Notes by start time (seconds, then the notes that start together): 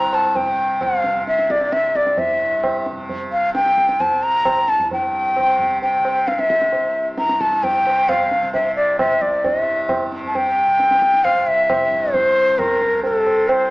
Already playing: C2 G2 C3 A#5
0.13 A5, tabla na
0.35 G5, tabla tin, tabla ge
0.43 C3
0.81 F5, tabla na, tabla ge
1.04 C3, tabla te
1.16 tabla ge
1.27 E5, tabla te
1.39 tabla te
1.50 D5, tabla ke
1.61 tabla te
1.68 C2
1.72 E5, tabla te
1.84 tabla te
1.95 D5, tabla ke
2.07 tabla te
2.17 E5, tabla tin, tabla ge
2.29 G2
2.64 tabla na, tabla ge
2.86 tabla te
2.91 C3
2.98 tabla ge
3.09 tabla tin, tabla ge
3.32 F5
3.53 C3 G5, tabla te
3.66 tabla te
3.78 tabla ke
3.89 tabla te
4.00 A5, tabla na, tabla ge
4.14 C2
4.23 A#5
4.45 tabla na, tabla ge
4.68 A5, tabla te
4.76 G2, tabla ge
4.91 G5, tabla tin, tabla ge
5.36 C3, tabla na, tabla ge
5.59 tabla ge
5.82 G5, tabla tin
5.99 C3
6.05 tabla na
6.28 F5, tabla te
6.39 E5, tabla te
6.50 tabla ke
6.60 C2, tabla te
6.72 tabla tin
7.18 A#5, tabla te
7.22 G2
7.29 tabla te
7.41 A5, tabla ke
7.52 tabla te
7.63 G5, tabla tin, tabla ge
7.82 C3
7.87 tabla na
8.09 F5, tabla na, tabla ge
8.31 tabla te
8.43 C3, tabla ge
8.53 E5, tabla tin, tabla ge
8.76 D5
8.99 E5, tabla na, tabla ge
9.05 C2
9.22 D5, tabla ge
9.44 G2 D#5, tabla tin, tabla ge
9.61 E5
9.89 tabla na, tabla ge
10.06 C3
10.12 tabla te
10.24 A5, tabla ge
10.35 G5, tabla tin, tabla ge
10.67 C3
10.79 tabla te
10.91 tabla te
11.02 tabla ke
11.13 tabla te
11.24 C2 F5, tabla na, tabla ge
11.47 E5
11.70 tabla na, tabla ge
11.87 G2
11.92 tabla ge
12.13 C5, tabla tin, tabla ge
12.48 C3
12.59 A#4, tabla na, tabla ge
12.81 tabla te
12.92 tabla ge
13.03 A#4, tabla tin
13.10 C3
13.15 A4
13.27 tabla na
13.48 C5, tabla na